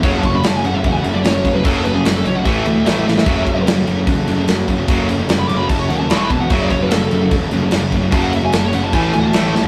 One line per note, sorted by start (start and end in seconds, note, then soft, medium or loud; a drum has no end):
0.03 0.21 F#1 loud
0.03 0.22 F#2 medium
0.03 0.22 C#3 medium
0.03 0.83 F#3 loud
0.03 0.23 F#3 loud
0.03 0.83 C#4 loud
0.03 0.84 F#4 loud
0.03 0.86 A4 loud
0.03 0.10 C#5 medium
0.03 kick loud
0.03 crash medium
0.12 0.17 F#5 medium
0.18 0.24 A5 medium
0.23 0.41 F#1 medium
0.23 0.32 F#2 medium
0.23 0.32 C#3 medium
0.23 0.35 C#6 loud
0.23 kick medium
0.23 crash medium
0.33 0.42 F#2 medium
0.33 0.42 C#3 medium
0.33 0.45 B5 medium
0.43 0.61 F#1 medium
0.43 0.62 F#2 medium
0.43 0.62 C#3 medium
0.43 0.55 A5 medium
0.43 snare loud
0.43 crash medium
0.56 0.65 G#5 loud
0.64 0.81 F#1 medium
0.64 0.73 F#2 medium
0.64 0.73 C#3 medium
0.64 0.77 F#5 medium
0.64 crash medium
0.74 0.83 F#2 medium
0.74 0.83 C#3 medium
0.74 0.85 E5 medium
0.84 1.02 E1 medium
0.84 1.02 F#2 medium
0.84 1.02 C#3 medium
0.84 1.63 F#3 medium
0.84 1.64 C#4 medium
0.84 1.65 F#4 medium
0.84 1.67 A4 medium
0.84 0.92 F#5 medium
0.84 kick loud
0.84 crash medium
0.92 0.99 G#5 loud
0.99 1.05 F#5 medium
1.04 1.21 F#1 medium
1.04 1.13 F#2 medium
1.04 1.12 C#3 medium
1.04 1.15 E5 loud
1.04 crash medium
1.14 1.22 F#2 medium
1.14 1.22 C#3 medium
1.14 1.23 D5 medium
1.23 1.59 F#1 medium
1.23 1.42 F#2 medium
1.23 1.42 C#3 loud
1.23 1.54 C#5 medium
1.23 snare loud
1.23 crash medium
1.44 1.53 F#2 medium
1.44 1.53 C#3 medium
1.44 kick medium
1.44 crash medium
1.53 1.62 F#2 medium
1.53 1.63 C#3 medium
1.53 1.64 B4 medium
1.64 2.00 F#1 medium
1.64 1.83 F#2 medium
1.64 1.83 C#3 medium
1.64 1.84 F#3 loud
1.64 2.45 F#3 medium
1.64 2.45 C#4 medium
1.64 2.46 F#4 loud
1.64 1.71 A4 medium
1.64 kick loud
1.64 crash loud
1.68 1.78 G#4 medium
1.68 2.47 A4 loud
1.78 1.84 A4 medium
1.84 1.93 F#2 medium
1.84 1.92 C#3 medium
1.84 1.94 B4 loud
1.84 crash medium
1.94 2.02 F#2 medium
1.94 2.03 C#3 medium
1.94 2.05 G#4 medium
2.04 2.22 F#1 medium
2.04 2.23 F#2 medium
2.04 2.23 C#3 medium
2.04 2.15 F#4 medium
2.04 snare loud
2.04 crash medium
2.16 2.26 A4 medium
2.24 2.45 B1 medium
2.24 2.34 F#2 medium
2.24 2.34 C#3 medium
2.24 2.36 C#5 medium
2.24 crash medium
2.35 2.46 F#2 medium
2.35 2.44 C#3 medium
2.35 2.45 F#5 loud
2.45 2.63 A1 medium
2.45 2.64 A2 medium
2.45 2.64 E3 loud
2.45 2.85 A3 medium
2.45 2.65 A3 medium
2.45 2.85 E4 medium
2.45 2.87 A4 loud
2.45 3.67 E5 medium
2.45 2.86 E5 loud
2.45 kick loud
2.45 crash medium
2.65 2.84 D2 medium
2.65 2.73 A2 medium
2.65 2.73 E3 medium
2.65 crash medium
2.74 2.83 A2 medium
2.74 2.84 E3 medium
2.84 3.04 A1 loud
2.84 3.04 A2 loud
2.84 3.04 E3 loud
2.84 3.25 A3 medium
2.84 3.05 A3 loud
2.84 3.26 E4 medium
2.84 3.28 A4 medium
2.84 3.27 E5 loud
2.84 snare loud
2.84 crash medium
3.05 3.24 A1 medium
3.05 3.14 A2 medium
3.05 3.14 E3 medium
3.05 snare medium
3.15 3.26 A2 medium
3.15 3.26 E3 medium
3.15 snare medium
3.25 3.44 F#1 medium
3.25 3.44 F#2 loud
3.25 3.44 C#3 medium
3.25 4.05 F#3 loud
3.25 3.46 F#3 medium
3.25 4.06 C#4 loud
3.25 4.07 F#4 loud
3.25 4.08 A4 loud
3.25 kick loud
3.25 crash medium
3.45 3.64 F#1 medium
3.45 3.55 F#2 medium
3.45 3.55 C#3 medium
3.45 kick medium
3.45 crash medium
3.56 3.64 F#2 medium
3.56 3.65 C#3 medium
3.65 3.84 F#1 medium
3.65 3.85 F#2 medium
3.65 3.85 C#3 medium
3.65 snare loud
3.65 crash medium
3.87 4.05 F#1 medium
3.87 3.96 F#2 medium
3.87 3.95 C#3 medium
3.87 crash medium
3.97 4.06 F#2 medium
3.97 4.06 C#3 medium
4.06 4.25 E1 medium
4.06 4.26 F#2 medium
4.06 4.26 C#3 medium
4.06 4.87 F#3 medium
4.06 4.87 C#4 medium
4.06 4.88 F#4 medium
4.06 4.88 A4 medium
4.06 kick loud
4.06 crash medium
4.27 4.45 F#1 medium
4.27 4.37 F#2 medium
4.27 4.36 C#3 medium
4.27 crash medium
4.37 4.47 F#2 medium
4.37 4.47 C#3 medium
4.48 4.83 F#1 loud
4.48 4.67 F#2 medium
4.48 4.67 C#3 loud
4.48 snare loud
4.48 crash medium
4.68 4.78 F#2 medium
4.68 4.77 C#3 medium
4.68 kick medium
4.68 crash medium
4.78 4.86 F#2 medium
4.78 4.87 C#3 medium
4.88 5.23 F#1 loud
4.88 5.07 F#2 medium
4.88 5.08 C#3 medium
4.88 5.68 F#3 medium
4.88 5.08 F#3 loud
4.88 5.69 C#4 loud
4.88 5.69 F#4 loud
4.88 5.70 A4 loud
4.88 kick loud
4.88 crash loud
5.09 5.18 F#2 medium
5.09 5.18 C#3 medium
5.09 crash medium
5.19 5.28 F#2 medium
5.19 5.29 C#3 medium
5.29 5.46 F#1 medium
5.29 5.48 F#2 medium
5.29 5.48 C#3 medium
5.29 snare loud
5.29 crash medium
5.39 5.48 B5 medium
5.48 5.67 F#1 medium
5.48 5.59 F#2 medium
5.48 5.59 C#3 medium
5.48 5.57 D6 loud
5.48 crash medium
5.57 5.68 F#2 medium
5.57 5.69 C#3 medium
5.57 5.68 B5 loud
5.68 5.87 F#1 loud
5.68 5.88 F#2 medium
5.68 5.88 C#3 medium
5.68 6.09 F#3 medium
5.68 6.09 C#4 medium
5.68 6.10 F#4 medium
5.68 6.10 A4 medium
5.68 5.79 A5 medium
5.68 kick loud
5.68 crash medium
5.79 5.89 C#5 medium
5.89 6.12 D#2 medium
5.89 5.99 F#2 medium
5.89 5.99 C#3 medium
5.89 5.99 F#5 medium
5.89 crash medium
5.99 6.10 F#2 medium
5.99 6.10 C#3 medium
5.99 6.10 A5 medium
6.09 6.28 E1 loud
6.09 6.30 E2 loud
6.09 6.29 B2 loud
6.09 6.50 E3 medium
6.09 6.30 E3 loud
6.09 6.50 B3 medium
6.09 6.51 E4 medium
6.09 6.16 B5 medium
6.09 snare loud
6.09 crash medium
6.14 6.51 B4 medium
6.14 6.23 C#6 loud
6.23 6.30 B5 loud
6.30 6.48 E1 medium
6.30 6.40 E2 medium
6.30 6.40 B2 medium
6.30 6.40 A5 loud
6.30 kick medium
6.30 crash medium
6.40 6.51 E2 medium
6.40 6.51 B2 medium
6.40 6.50 F#5 medium
6.50 6.68 F#1 loud
6.50 6.70 F#2 medium
6.50 6.70 C#3 medium
6.50 7.30 F#3 loud
6.50 6.71 F#3 loud
6.50 7.31 C#4 loud
6.50 7.31 F#4 loud
6.50 7.33 A4 loud
6.50 6.61 E5 medium
6.50 kick loud
6.50 crash medium
6.61 6.70 D5 medium
6.70 6.88 F#1 medium
6.70 6.81 F#2 medium
6.70 6.81 C#3 medium
6.70 6.80 C#5 medium
6.70 kick medium
6.70 crash medium
6.82 6.90 F#2 medium
6.82 6.91 C#3 medium
6.82 6.91 B4 medium
6.91 7.08 F#1 medium
6.91 7.09 F#2 medium
6.91 7.10 C#3 loud
6.91 7.31 A4 medium
6.91 snare loud
6.91 crash medium
7.11 7.29 F#1 medium
7.11 7.21 F#2 medium
7.11 7.20 C#3 medium
7.11 crash medium
7.21 7.32 F#2 medium
7.21 7.32 C#3 medium
7.31 7.49 E1 medium
7.31 7.50 F#2 medium
7.31 7.50 C#3 medium
7.31 8.10 F#3 medium
7.31 8.11 C#4 medium
7.31 8.12 F#4 medium
7.31 8.12 A4 medium
7.31 kick loud
7.31 crash medium
7.51 7.70 F#1 medium
7.51 7.61 F#2 medium
7.51 7.61 C#3 medium
7.51 crash medium
7.62 7.70 F#2 medium
7.62 7.70 C#3 medium
7.71 8.07 F#1 medium
7.71 7.90 F#2 medium
7.71 7.90 C#3 loud
7.71 snare loud
7.71 crash medium
7.91 8.00 F#2 medium
7.91 8.00 C#3 medium
7.91 kick medium
7.91 crash medium
8.01 8.09 F#2 medium
8.01 8.10 C#3 medium
8.11 8.47 F#1 medium
8.11 8.31 F#2 loud
8.11 8.31 C#3 medium
8.11 8.92 F#3 loud
8.11 8.31 F#3 loud
8.11 8.92 C#4 medium
8.11 8.93 F#4 loud
8.11 8.93 A4 loud
8.11 8.23 A5 medium
8.11 kick loud
8.11 crash medium
8.24 8.33 F#5 medium
8.32 8.41 F#2 medium
8.32 8.41 C#3 medium
8.32 8.43 E5 loud
8.32 crash medium
8.42 8.50 F#2 medium
8.42 8.51 C#3 medium
8.42 8.54 G#5 medium
8.52 8.71 F#1 loud
8.52 8.71 F#2 medium
8.52 8.71 C#3 medium
8.52 8.63 A5 loud
8.52 snare loud
8.52 crash medium
8.65 8.74 C#5 medium
8.73 8.91 F#1 loud
8.73 8.82 F#2 medium
8.73 8.82 C#3 medium
8.73 8.84 F#5 medium
8.73 crash medium
8.83 8.93 F#2 medium
8.83 8.92 C#3 medium
8.83 8.93 A5 loud
8.92 9.11 A1 loud
8.92 9.12 A2 medium
8.92 9.13 E3 loud
8.92 9.32 A3 medium
8.92 9.13 A3 loud
8.92 9.33 E4 medium
8.92 9.33 A4 loud
8.92 9.34 E5 loud
8.92 9.02 G#5 medium
8.92 kick loud
8.92 crash medium
9.03 9.13 A5 loud
9.13 9.31 D2 medium
9.13 9.23 A2 medium
9.13 9.22 E3 medium
9.13 9.20 G#5 loud
9.13 crash medium
9.20 9.32 A2 medium
9.20 9.33 E3 medium
9.20 9.27 F#5 medium
9.27 9.62 A5 medium
9.33 9.52 A1 loud
9.33 9.53 A2 loud
9.33 9.53 E3 loud
9.33 9.68 A3 medium
9.33 9.53 A3 loud
9.33 9.68 E4 medium
9.33 9.68 A4 medium
9.33 9.68 E5 loud
9.33 snare loud
9.33 crash medium
9.54 9.68 A#1 loud
9.54 9.63 A2 medium
9.54 9.63 E3 medium
9.54 snare medium
9.64 9.68 A2 medium
9.64 9.68 E3 medium
9.64 floor tom medium